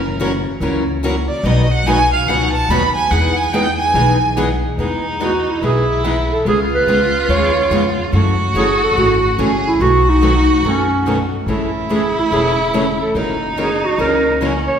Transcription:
Already playing: F#1 A#4
0.20 C#3 E3 F#3 A#3 C#4 E4 F#4 A#4
0.60 C#2 C#3 E3 F#3 A#3 C#4 E4 F#4 A#4
1.03 C#3 E3 F#3 A#3 C#4 E4 F#4 A#4
1.28 D5
1.44 B1 B2 D#3 F#3 B3 D#4 F#4 B4 D#5
1.72 F#5
1.87 B2 D#3 F#3 B3 D#4 F#4 B4 G#5
2.13 F5
2.27 C#2 B2 D#3 F#3 B3 D#4 F#4 B4 F#5
2.53 A5
2.69 D#2 B2 D#3 F#3 B3 D#4 F#4 B4 B5
2.95 G#5
3.11 E2 E3 G#3 B3 D#4 G#4 F#5
3.37 G#5
3.53 E3 G#3 B3 D#4 G#4 G5
3.78 G#5
3.94 B1 E3 G#3 B3 D#4 G#4
4.36 E3 G#3 B3 D#4 G#4
4.78 E2 E3 G#3 B3 D#4 G#4
5.20 E3 G#3 B3 D#4 F#4 G#4
5.51 E4
5.62 B1 E3 G#3 B3 D#4 E4 G#4
6.04 E3 G#3 B3 D#4 G#4
6.32 A4
6.45 C#2 C#3 G#3 B3 F4 G#4
6.73 B4
6.87 C#2 C#3 G#3 B3 F4 G#4
7.28 D#2 C#3 G#3 B3 F4 G#4 C#5
7.70 F2 C#3 G#3 B3 F4 G#4
8.12 F#2 C#3 E3 F#3 A3 C#4 E4 F#4 A4
8.54 F#1 C#3 E3 F#3 A3 C#4 E4 F#4 G#4 A4
8.83 A4
8.95 G#1 C#3 E3 F#3 A3 C#4 E4 F#4 A4
9.38 A1 C#3 E3 F#3 A3 C#4 E4 F#4 G#4 A4
9.67 E4
9.79 B1 B2 D#3 F#3 A3 B3 D#4 F#4 A4
10.09 D#4
10.21 B2 D#3 F#3 A3 B3 D#4 F#4 A4
10.63 F#2 B2 D#3 F#3 A3 B3 C#4 D#4 F#4 A4
11.06 B2 D#3 F#3 A3 B3 D#4 F#4 A4
11.46 A1 C#3 E3 G#3 A3 C#4 E4 G#4 A4
11.89 C#3 E3 G#3 A3 C#4 E4 G#4 A4
12.19 E4
12.31 E1 C#3 E3 G#3 A3 C#4 E4 G#4 A4
12.73 C#3 E3 G#3 A3 C#4 E4 G#4 A4
13.00 A4
13.15 F#1 C#3 E3 F#3 A#3 C#4 D#4 E4 F#4 A#4
13.57 C#3 E3 F#3 A#3 C#4 E4 F#4 G#4 A#4
13.85 F#4
13.98 C#2 C#3 E3 F#3 A#3 C#4 E4 F#4 A#4
14.41 C#3 E3 F#3 A#3 C#4 E4 F#4 A#4
14.68 C#5

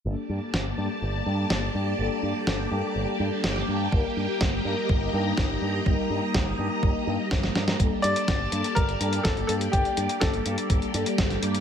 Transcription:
0.05 G1 G3 A#3 D4 G4 A4 D5 A5
0.29 G2
0.54 G1, snare
0.78 G2 G3 A#3 D4 A4
1.02 G1
1.26 G2 G3 A#3 D4 A4
1.50 G1, snare
1.75 G2
1.99 G1 G3 A#3 D4 A4
2.23 G2
2.47 G1, snare
2.71 G2 G3 A#3 D4 A4
2.95 G1
3.20 G2 G3 A#3 D4 A4
3.44 G1, snare
3.56 snare
3.68 G2
3.92 G1 G3 A#3 D#4 A#4 D#5 A#5, kick
4.17 G2
4.41 G1, kick, snare
4.65 G2 G3 A#3 D#4 A#4
4.89 G1, kick
5.13 G2 G3 A#3 D#4 A#4
5.37 G1, kick, snare
5.62 G2
5.86 G1 G3 A#3 D#4 A#4, kick
6.10 G2
6.34 G1, kick, snare
6.59 G2 G3 A#3 D#4 A#4
6.83 G1, kick
7.07 G2 G3 A#3 D#4 A#4
7.31 G1, kick, snare
7.43 snare
7.55 G2, snare
7.68 snare
7.80 G1 G3 A#3 D4 G4 A4 D5 A5, kick, closed hi-hat
8.02 G2 D5, closed hi-hat
8.16 closed hi-hat
8.28 G1, kick, snare, closed hi-hat
8.52 G2 G3 A#3 D4 A4, closed hi-hat
8.64 closed hi-hat
8.75 G1 A#4, kick, closed hi-hat
8.89 closed hi-hat
9.01 G2 G3 A#3 D4 A4, closed hi-hat
9.13 closed hi-hat
9.23 G1 A4, kick, snare, closed hi-hat
9.37 closed hi-hat
9.47 G2 A4, closed hi-hat
9.61 closed hi-hat
9.72 G1 G3 A#3 D4 G4 A4, kick, closed hi-hat
9.85 closed hi-hat
9.97 G2, closed hi-hat
10.09 closed hi-hat
10.20 G1 A4, kick, snare, closed hi-hat
10.34 closed hi-hat
10.46 G2 G3 A#3 D4 A4, closed hi-hat
10.58 closed hi-hat
10.70 G1, kick, closed hi-hat
10.82 closed hi-hat
10.94 G2 G3 A#3 D4 A4, closed hi-hat
11.06 closed hi-hat
11.18 G1, kick, snare, closed hi-hat
11.30 snare, closed hi-hat
11.43 G2, closed hi-hat
11.55 closed hi-hat

